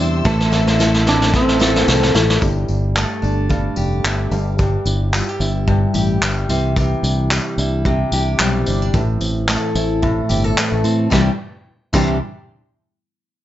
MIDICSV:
0, 0, Header, 1, 8, 480
1, 0, Start_track
1, 0, Key_signature, 0, "major"
1, 0, Tempo, 543478
1, 223, Time_signature, 4, 2, 24, 8
1, 11876, End_track
2, 0, Start_track
2, 0, Title_t, "String section"
2, 0, Program_c, 0, 48
2, 0, Note_on_c, 0, 67, 80
2, 0, Note_on_c, 0, 74, 78
2, 0, Note_on_c, 0, 84, 79
2, 0, Note_on_c, 0, 88, 91
2, 189, Note_off_c, 0, 67, 0
2, 199, Note_off_c, 0, 74, 0
2, 218, Note_on_c, 0, 76, 74
2, 221, Note_on_c, 0, 69, 91
2, 2099, Note_off_c, 0, 84, 0
2, 2099, Note_off_c, 0, 88, 0
2, 2114, Note_off_c, 0, 76, 0
2, 2115, Note_off_c, 0, 69, 0
2, 11876, End_track
3, 0, Start_track
3, 0, Title_t, "Nylon-string guitar"
3, 0, Program_c, 1, 24
3, 0, Note_on_c, 1, 52, 94
3, 0, Note_on_c, 1, 60, 65
3, 0, Note_on_c, 1, 62, 55
3, 0, Note_on_c, 1, 67, 76
3, 219, Note_off_c, 1, 52, 0
3, 222, Note_on_c, 1, 52, 90
3, 223, Note_off_c, 1, 62, 0
3, 227, Note_on_c, 1, 64, 70
3, 278, Note_off_c, 1, 67, 0
3, 460, Note_off_c, 1, 60, 0
3, 464, Note_on_c, 1, 60, 55
3, 694, Note_off_c, 1, 64, 0
3, 704, Note_on_c, 1, 64, 69
3, 931, Note_off_c, 1, 60, 0
3, 942, Note_on_c, 1, 60, 62
3, 1173, Note_off_c, 1, 52, 0
3, 1183, Note_on_c, 1, 52, 72
3, 1409, Note_off_c, 1, 64, 0
3, 1420, Note_on_c, 1, 64, 82
3, 1650, Note_off_c, 1, 52, 0
3, 1661, Note_on_c, 1, 52, 66
3, 1888, Note_off_c, 1, 60, 0
3, 1899, Note_on_c, 1, 60, 57
3, 2134, Note_off_c, 1, 52, 0
3, 2137, Note_on_c, 1, 55, 79
3, 2189, Note_off_c, 1, 64, 0
3, 2190, Note_off_c, 1, 60, 0
3, 2374, Note_on_c, 1, 62, 52
3, 2615, Note_on_c, 1, 69, 61
3, 2846, Note_off_c, 1, 62, 0
3, 2857, Note_on_c, 1, 62, 56
3, 3085, Note_off_c, 1, 69, 0
3, 3095, Note_on_c, 1, 69, 67
3, 3328, Note_off_c, 1, 62, 0
3, 3338, Note_on_c, 1, 62, 60
3, 3569, Note_on_c, 1, 59, 56
3, 3815, Note_off_c, 1, 55, 0
3, 3819, Note_on_c, 1, 55, 64
3, 3867, Note_off_c, 1, 69, 0
3, 3869, Note_off_c, 1, 62, 0
3, 4053, Note_off_c, 1, 55, 0
3, 4057, Note_on_c, 1, 55, 81
3, 4298, Note_on_c, 1, 64, 61
3, 4535, Note_on_c, 1, 65, 64
3, 4562, Note_off_c, 1, 59, 0
3, 4671, Note_off_c, 1, 65, 0
3, 4671, Note_on_c, 1, 67, 50
3, 4771, Note_off_c, 1, 64, 0
3, 4775, Note_on_c, 1, 64, 63
3, 5007, Note_off_c, 1, 67, 0
3, 5017, Note_on_c, 1, 67, 66
3, 5253, Note_off_c, 1, 64, 0
3, 5256, Note_on_c, 1, 64, 61
3, 5496, Note_on_c, 1, 59, 52
3, 5736, Note_off_c, 1, 55, 0
3, 5740, Note_on_c, 1, 52, 79
3, 5788, Note_off_c, 1, 59, 0
3, 5973, Note_off_c, 1, 52, 0
3, 5977, Note_on_c, 1, 52, 82
3, 6214, Note_off_c, 1, 64, 0
3, 6217, Note_on_c, 1, 62, 52
3, 6452, Note_off_c, 1, 67, 0
3, 6456, Note_on_c, 1, 67, 71
3, 6685, Note_off_c, 1, 62, 0
3, 6695, Note_on_c, 1, 62, 59
3, 6928, Note_off_c, 1, 67, 0
3, 6938, Note_on_c, 1, 67, 61
3, 7171, Note_off_c, 1, 62, 0
3, 7182, Note_on_c, 1, 62, 66
3, 7417, Note_on_c, 1, 60, 60
3, 7651, Note_off_c, 1, 62, 0
3, 7654, Note_off_c, 1, 60, 0
3, 7654, Note_on_c, 1, 60, 55
3, 7790, Note_off_c, 1, 60, 0
3, 7790, Note_on_c, 1, 62, 56
3, 7889, Note_off_c, 1, 52, 0
3, 7893, Note_on_c, 1, 52, 73
3, 7951, Note_off_c, 1, 62, 0
3, 7952, Note_off_c, 1, 67, 0
3, 8131, Note_on_c, 1, 60, 64
3, 8376, Note_on_c, 1, 64, 72
3, 8612, Note_off_c, 1, 60, 0
3, 8616, Note_on_c, 1, 60, 57
3, 8854, Note_off_c, 1, 64, 0
3, 8858, Note_on_c, 1, 64, 67
3, 9093, Note_off_c, 1, 60, 0
3, 9096, Note_on_c, 1, 60, 67
3, 9335, Note_off_c, 1, 52, 0
3, 9338, Note_on_c, 1, 52, 67
3, 9579, Note_off_c, 1, 60, 0
3, 9582, Note_on_c, 1, 60, 62
3, 9810, Note_off_c, 1, 52, 0
3, 9814, Note_on_c, 1, 52, 77
3, 9818, Note_off_c, 1, 60, 0
3, 9822, Note_on_c, 1, 60, 79
3, 9824, Note_off_c, 1, 64, 0
3, 9828, Note_on_c, 1, 62, 88
3, 9837, Note_on_c, 1, 67, 81
3, 9971, Note_off_c, 1, 52, 0
3, 9975, Note_off_c, 1, 60, 0
3, 9978, Note_off_c, 1, 62, 0
3, 9983, Note_off_c, 1, 67, 0
3, 10537, Note_on_c, 1, 52, 84
3, 10544, Note_on_c, 1, 60, 78
3, 10552, Note_on_c, 1, 62, 90
3, 10559, Note_on_c, 1, 67, 101
3, 10737, Note_off_c, 1, 52, 0
3, 10741, Note_off_c, 1, 60, 0
3, 10744, Note_off_c, 1, 62, 0
3, 10748, Note_off_c, 1, 67, 0
3, 11876, End_track
4, 0, Start_track
4, 0, Title_t, "Electric slide guitar"
4, 0, Program_c, 2, 29
4, 233, Note_on_c, 2, 57, 85
4, 909, Note_off_c, 2, 57, 0
4, 960, Note_on_c, 2, 62, 96
4, 1196, Note_off_c, 2, 62, 0
4, 1202, Note_on_c, 2, 60, 93
4, 1873, Note_off_c, 2, 60, 0
4, 11876, End_track
5, 0, Start_track
5, 0, Title_t, "Steel-string acoustic guitar"
5, 0, Program_c, 3, 25
5, 0, Note_on_c, 3, 48, 92
5, 0, Note_on_c, 3, 55, 71
5, 0, Note_on_c, 3, 62, 62
5, 0, Note_on_c, 3, 64, 54
5, 0, Note_on_c, 3, 67, 73
5, 222, Note_on_c, 3, 45, 87
5, 223, Note_off_c, 3, 67, 0
5, 231, Note_on_c, 3, 69, 72
5, 272, Note_off_c, 3, 62, 0
5, 274, Note_off_c, 3, 55, 0
5, 275, Note_off_c, 3, 48, 0
5, 453, Note_off_c, 3, 64, 0
5, 456, Note_on_c, 3, 64, 69
5, 698, Note_on_c, 3, 57, 68
5, 942, Note_on_c, 3, 60, 62
5, 1170, Note_off_c, 3, 45, 0
5, 1181, Note_on_c, 3, 45, 85
5, 1410, Note_off_c, 3, 69, 0
5, 1413, Note_on_c, 3, 69, 73
5, 1655, Note_off_c, 3, 57, 0
5, 1659, Note_on_c, 3, 57, 71
5, 1884, Note_off_c, 3, 64, 0
5, 1894, Note_on_c, 3, 64, 63
5, 2124, Note_off_c, 3, 45, 0
5, 2127, Note_on_c, 3, 43, 68
5, 2186, Note_off_c, 3, 69, 0
5, 2187, Note_off_c, 3, 64, 0
5, 2189, Note_off_c, 3, 57, 0
5, 2189, Note_off_c, 3, 60, 0
5, 2610, Note_on_c, 3, 57, 59
5, 2845, Note_on_c, 3, 62, 50
5, 3075, Note_off_c, 3, 43, 0
5, 3086, Note_on_c, 3, 43, 77
5, 3328, Note_on_c, 3, 67, 62
5, 3559, Note_off_c, 3, 57, 0
5, 3570, Note_on_c, 3, 57, 64
5, 3804, Note_off_c, 3, 43, 0
5, 3814, Note_on_c, 3, 43, 66
5, 3862, Note_off_c, 3, 62, 0
5, 3864, Note_off_c, 3, 57, 0
5, 4045, Note_off_c, 3, 43, 0
5, 4055, Note_on_c, 3, 43, 76
5, 4528, Note_on_c, 3, 55, 58
5, 4773, Note_on_c, 3, 64, 56
5, 5002, Note_off_c, 3, 43, 0
5, 5013, Note_on_c, 3, 43, 81
5, 5243, Note_off_c, 3, 67, 0
5, 5246, Note_on_c, 3, 67, 68
5, 5488, Note_off_c, 3, 55, 0
5, 5492, Note_on_c, 3, 55, 65
5, 5737, Note_on_c, 3, 48, 73
5, 5787, Note_off_c, 3, 43, 0
5, 5969, Note_off_c, 3, 48, 0
5, 5980, Note_on_c, 3, 48, 85
5, 6458, Note_off_c, 3, 55, 0
5, 6462, Note_on_c, 3, 55, 59
5, 6698, Note_off_c, 3, 64, 0
5, 6701, Note_on_c, 3, 64, 56
5, 6930, Note_off_c, 3, 48, 0
5, 6940, Note_on_c, 3, 48, 80
5, 7180, Note_off_c, 3, 67, 0
5, 7184, Note_on_c, 3, 67, 74
5, 7404, Note_off_c, 3, 55, 0
5, 7415, Note_on_c, 3, 55, 70
5, 7660, Note_on_c, 3, 62, 55
5, 7897, Note_on_c, 3, 45, 77
5, 7950, Note_off_c, 3, 55, 0
5, 7952, Note_off_c, 3, 62, 0
5, 7953, Note_off_c, 3, 48, 0
5, 7954, Note_off_c, 3, 67, 0
5, 8375, Note_on_c, 3, 57, 63
5, 8612, Note_off_c, 3, 64, 0
5, 8616, Note_on_c, 3, 64, 62
5, 8843, Note_off_c, 3, 45, 0
5, 8853, Note_on_c, 3, 45, 89
5, 9090, Note_on_c, 3, 67, 67
5, 9221, Note_off_c, 3, 67, 0
5, 9221, Note_on_c, 3, 69, 55
5, 9330, Note_off_c, 3, 57, 0
5, 9341, Note_on_c, 3, 57, 62
5, 9575, Note_on_c, 3, 60, 55
5, 9801, Note_off_c, 3, 45, 0
5, 9804, Note_on_c, 3, 48, 81
5, 9814, Note_off_c, 3, 57, 0
5, 9814, Note_on_c, 3, 52, 70
5, 9818, Note_off_c, 3, 60, 0
5, 9818, Note_on_c, 3, 55, 89
5, 9822, Note_on_c, 3, 60, 75
5, 9823, Note_off_c, 3, 64, 0
5, 9826, Note_off_c, 3, 69, 0
5, 9826, Note_on_c, 3, 62, 84
5, 9829, Note_on_c, 3, 67, 95
5, 9967, Note_off_c, 3, 48, 0
5, 9971, Note_off_c, 3, 52, 0
5, 9973, Note_off_c, 3, 55, 0
5, 9976, Note_off_c, 3, 60, 0
5, 9978, Note_off_c, 3, 62, 0
5, 9979, Note_off_c, 3, 67, 0
5, 10535, Note_on_c, 3, 48, 83
5, 10543, Note_on_c, 3, 52, 77
5, 10548, Note_on_c, 3, 55, 88
5, 10550, Note_on_c, 3, 60, 87
5, 10555, Note_on_c, 3, 62, 81
5, 10558, Note_on_c, 3, 67, 91
5, 10736, Note_off_c, 3, 48, 0
5, 10740, Note_off_c, 3, 52, 0
5, 10742, Note_off_c, 3, 55, 0
5, 10744, Note_off_c, 3, 60, 0
5, 10746, Note_off_c, 3, 62, 0
5, 10748, Note_off_c, 3, 67, 0
5, 11876, End_track
6, 0, Start_track
6, 0, Title_t, "Fingered electric bass"
6, 0, Program_c, 4, 33
6, 0, Note_on_c, 4, 40, 82
6, 182, Note_off_c, 4, 40, 0
6, 221, Note_on_c, 4, 33, 106
6, 1621, Note_off_c, 4, 33, 0
6, 1658, Note_on_c, 4, 36, 86
6, 1854, Note_off_c, 4, 36, 0
6, 1896, Note_on_c, 4, 33, 85
6, 2092, Note_off_c, 4, 33, 0
6, 2137, Note_on_c, 4, 31, 89
6, 2333, Note_off_c, 4, 31, 0
6, 2377, Note_on_c, 4, 31, 86
6, 2681, Note_off_c, 4, 31, 0
6, 2855, Note_on_c, 4, 31, 103
6, 3248, Note_off_c, 4, 31, 0
6, 3331, Note_on_c, 4, 29, 83
6, 3529, Note_off_c, 4, 29, 0
6, 3570, Note_on_c, 4, 31, 78
6, 3769, Note_off_c, 4, 31, 0
6, 3809, Note_on_c, 4, 31, 93
6, 4204, Note_off_c, 4, 31, 0
6, 4287, Note_on_c, 4, 31, 83
6, 4595, Note_off_c, 4, 31, 0
6, 4769, Note_on_c, 4, 31, 99
6, 5165, Note_off_c, 4, 31, 0
6, 5250, Note_on_c, 4, 33, 91
6, 5448, Note_off_c, 4, 33, 0
6, 5490, Note_on_c, 4, 31, 88
6, 5689, Note_off_c, 4, 31, 0
6, 5731, Note_on_c, 4, 36, 71
6, 6126, Note_off_c, 4, 36, 0
6, 6209, Note_on_c, 4, 36, 86
6, 6517, Note_off_c, 4, 36, 0
6, 6691, Note_on_c, 4, 36, 93
6, 7087, Note_off_c, 4, 36, 0
6, 7171, Note_on_c, 4, 36, 79
6, 7370, Note_off_c, 4, 36, 0
6, 7414, Note_on_c, 4, 35, 81
6, 7612, Note_off_c, 4, 35, 0
6, 7653, Note_on_c, 4, 31, 72
6, 7852, Note_off_c, 4, 31, 0
6, 7894, Note_on_c, 4, 33, 95
6, 8093, Note_off_c, 4, 33, 0
6, 8131, Note_on_c, 4, 33, 90
6, 8439, Note_off_c, 4, 33, 0
6, 8613, Note_on_c, 4, 33, 93
6, 9010, Note_off_c, 4, 33, 0
6, 9097, Note_on_c, 4, 31, 95
6, 9295, Note_off_c, 4, 31, 0
6, 9468, Note_on_c, 4, 33, 84
6, 9559, Note_off_c, 4, 33, 0
6, 9574, Note_on_c, 4, 45, 79
6, 9774, Note_off_c, 4, 45, 0
6, 9823, Note_on_c, 4, 36, 91
6, 9965, Note_off_c, 4, 36, 0
6, 10545, Note_on_c, 4, 36, 105
6, 10768, Note_off_c, 4, 36, 0
6, 11876, End_track
7, 0, Start_track
7, 0, Title_t, "Muted fingered electric bass strokes"
7, 9337, Note_on_c, 9, 29, 49
7, 9425, Note_off_c, 9, 29, 0
7, 11876, End_track
8, 0, Start_track
8, 0, Title_t, "Drums"
8, 218, Note_on_c, 9, 54, 49
8, 219, Note_on_c, 9, 38, 71
8, 223, Note_on_c, 9, 36, 113
8, 306, Note_off_c, 9, 54, 0
8, 308, Note_off_c, 9, 38, 0
8, 311, Note_off_c, 9, 36, 0
8, 355, Note_on_c, 9, 38, 57
8, 443, Note_off_c, 9, 38, 0
8, 462, Note_on_c, 9, 38, 67
8, 464, Note_on_c, 9, 54, 52
8, 550, Note_off_c, 9, 38, 0
8, 552, Note_off_c, 9, 54, 0
8, 593, Note_on_c, 9, 38, 63
8, 681, Note_off_c, 9, 38, 0
8, 703, Note_on_c, 9, 38, 72
8, 706, Note_on_c, 9, 54, 98
8, 792, Note_off_c, 9, 38, 0
8, 795, Note_off_c, 9, 54, 0
8, 833, Note_on_c, 9, 38, 64
8, 921, Note_off_c, 9, 38, 0
8, 942, Note_on_c, 9, 38, 77
8, 944, Note_on_c, 9, 54, 36
8, 1030, Note_off_c, 9, 38, 0
8, 1033, Note_off_c, 9, 54, 0
8, 1076, Note_on_c, 9, 38, 72
8, 1164, Note_off_c, 9, 38, 0
8, 1180, Note_on_c, 9, 36, 96
8, 1180, Note_on_c, 9, 38, 85
8, 1182, Note_on_c, 9, 54, 32
8, 1269, Note_off_c, 9, 36, 0
8, 1269, Note_off_c, 9, 38, 0
8, 1270, Note_off_c, 9, 54, 0
8, 1312, Note_on_c, 9, 38, 75
8, 1401, Note_off_c, 9, 38, 0
8, 1408, Note_on_c, 9, 54, 60
8, 1420, Note_on_c, 9, 38, 96
8, 1496, Note_off_c, 9, 54, 0
8, 1508, Note_off_c, 9, 38, 0
8, 1554, Note_on_c, 9, 38, 88
8, 1642, Note_off_c, 9, 38, 0
8, 1661, Note_on_c, 9, 38, 96
8, 1662, Note_on_c, 9, 54, 84
8, 1750, Note_off_c, 9, 38, 0
8, 1750, Note_off_c, 9, 54, 0
8, 1792, Note_on_c, 9, 38, 80
8, 1880, Note_off_c, 9, 38, 0
8, 1895, Note_on_c, 9, 54, 44
8, 1899, Note_on_c, 9, 38, 125
8, 1983, Note_off_c, 9, 54, 0
8, 1988, Note_off_c, 9, 38, 0
8, 2031, Note_on_c, 9, 38, 93
8, 2119, Note_off_c, 9, 38, 0
8, 2134, Note_on_c, 9, 54, 46
8, 2138, Note_on_c, 9, 36, 93
8, 2222, Note_off_c, 9, 54, 0
8, 2226, Note_off_c, 9, 36, 0
8, 2371, Note_on_c, 9, 54, 43
8, 2459, Note_off_c, 9, 54, 0
8, 2619, Note_on_c, 9, 39, 91
8, 2622, Note_on_c, 9, 54, 72
8, 2707, Note_off_c, 9, 39, 0
8, 2710, Note_off_c, 9, 54, 0
8, 2862, Note_on_c, 9, 54, 30
8, 2951, Note_off_c, 9, 54, 0
8, 3090, Note_on_c, 9, 54, 30
8, 3096, Note_on_c, 9, 36, 86
8, 3179, Note_off_c, 9, 54, 0
8, 3184, Note_off_c, 9, 36, 0
8, 3323, Note_on_c, 9, 54, 54
8, 3411, Note_off_c, 9, 54, 0
8, 3576, Note_on_c, 9, 54, 69
8, 3579, Note_on_c, 9, 39, 101
8, 3664, Note_off_c, 9, 54, 0
8, 3667, Note_off_c, 9, 39, 0
8, 3810, Note_on_c, 9, 54, 44
8, 3899, Note_off_c, 9, 54, 0
8, 4049, Note_on_c, 9, 54, 44
8, 4055, Note_on_c, 9, 36, 96
8, 4138, Note_off_c, 9, 54, 0
8, 4143, Note_off_c, 9, 36, 0
8, 4289, Note_on_c, 9, 54, 47
8, 4296, Note_off_c, 9, 54, 0
8, 4296, Note_on_c, 9, 54, 65
8, 4384, Note_off_c, 9, 54, 0
8, 4538, Note_on_c, 9, 39, 89
8, 4540, Note_on_c, 9, 54, 87
8, 4626, Note_off_c, 9, 39, 0
8, 4628, Note_off_c, 9, 54, 0
8, 4776, Note_on_c, 9, 54, 60
8, 4779, Note_off_c, 9, 54, 0
8, 4779, Note_on_c, 9, 54, 29
8, 4867, Note_off_c, 9, 54, 0
8, 5014, Note_on_c, 9, 36, 82
8, 5102, Note_off_c, 9, 36, 0
8, 5247, Note_on_c, 9, 54, 55
8, 5255, Note_off_c, 9, 54, 0
8, 5255, Note_on_c, 9, 54, 60
8, 5343, Note_off_c, 9, 54, 0
8, 5499, Note_on_c, 9, 39, 99
8, 5503, Note_on_c, 9, 54, 72
8, 5587, Note_off_c, 9, 39, 0
8, 5591, Note_off_c, 9, 54, 0
8, 5735, Note_on_c, 9, 54, 58
8, 5738, Note_off_c, 9, 54, 0
8, 5738, Note_on_c, 9, 54, 47
8, 5827, Note_off_c, 9, 54, 0
8, 5974, Note_on_c, 9, 36, 105
8, 5974, Note_on_c, 9, 54, 49
8, 6062, Note_off_c, 9, 36, 0
8, 6062, Note_off_c, 9, 54, 0
8, 6216, Note_on_c, 9, 54, 52
8, 6217, Note_off_c, 9, 54, 0
8, 6217, Note_on_c, 9, 54, 64
8, 6305, Note_off_c, 9, 54, 0
8, 6457, Note_on_c, 9, 39, 96
8, 6458, Note_on_c, 9, 54, 90
8, 6545, Note_off_c, 9, 39, 0
8, 6547, Note_off_c, 9, 54, 0
8, 6697, Note_on_c, 9, 54, 67
8, 6703, Note_off_c, 9, 54, 0
8, 6703, Note_on_c, 9, 54, 33
8, 6792, Note_off_c, 9, 54, 0
8, 6935, Note_on_c, 9, 36, 86
8, 6936, Note_on_c, 9, 54, 28
8, 7023, Note_off_c, 9, 36, 0
8, 7025, Note_off_c, 9, 54, 0
8, 7171, Note_on_c, 9, 54, 52
8, 7173, Note_off_c, 9, 54, 0
8, 7173, Note_on_c, 9, 54, 65
8, 7261, Note_off_c, 9, 54, 0
8, 7415, Note_on_c, 9, 39, 106
8, 7416, Note_on_c, 9, 54, 86
8, 7503, Note_off_c, 9, 39, 0
8, 7504, Note_off_c, 9, 54, 0
8, 7651, Note_on_c, 9, 54, 46
8, 7652, Note_off_c, 9, 54, 0
8, 7652, Note_on_c, 9, 54, 55
8, 7741, Note_off_c, 9, 54, 0
8, 7893, Note_on_c, 9, 54, 48
8, 7896, Note_on_c, 9, 36, 104
8, 7981, Note_off_c, 9, 54, 0
8, 7984, Note_off_c, 9, 36, 0
8, 8131, Note_on_c, 9, 54, 52
8, 8135, Note_off_c, 9, 54, 0
8, 8135, Note_on_c, 9, 54, 60
8, 8224, Note_off_c, 9, 54, 0
8, 8378, Note_on_c, 9, 39, 100
8, 8381, Note_on_c, 9, 54, 78
8, 8466, Note_off_c, 9, 39, 0
8, 8469, Note_off_c, 9, 54, 0
8, 8615, Note_on_c, 9, 54, 65
8, 8624, Note_off_c, 9, 54, 0
8, 8624, Note_on_c, 9, 54, 33
8, 8713, Note_off_c, 9, 54, 0
8, 8857, Note_on_c, 9, 54, 28
8, 8859, Note_on_c, 9, 36, 88
8, 8945, Note_off_c, 9, 54, 0
8, 8947, Note_off_c, 9, 36, 0
8, 9089, Note_on_c, 9, 54, 53
8, 9102, Note_off_c, 9, 54, 0
8, 9102, Note_on_c, 9, 54, 61
8, 9190, Note_off_c, 9, 54, 0
8, 9340, Note_on_c, 9, 54, 82
8, 9344, Note_on_c, 9, 39, 110
8, 9428, Note_off_c, 9, 54, 0
8, 9432, Note_off_c, 9, 39, 0
8, 9574, Note_on_c, 9, 54, 41
8, 9584, Note_off_c, 9, 54, 0
8, 9584, Note_on_c, 9, 54, 51
8, 9672, Note_off_c, 9, 54, 0
8, 9815, Note_on_c, 9, 54, 74
8, 9823, Note_on_c, 9, 36, 95
8, 9824, Note_on_c, 9, 38, 87
8, 9903, Note_off_c, 9, 54, 0
8, 9912, Note_off_c, 9, 36, 0
8, 9912, Note_off_c, 9, 38, 0
8, 10539, Note_on_c, 9, 54, 88
8, 10545, Note_on_c, 9, 36, 101
8, 10545, Note_on_c, 9, 49, 87
8, 10627, Note_off_c, 9, 54, 0
8, 10633, Note_off_c, 9, 36, 0
8, 10634, Note_off_c, 9, 49, 0
8, 11876, End_track
0, 0, End_of_file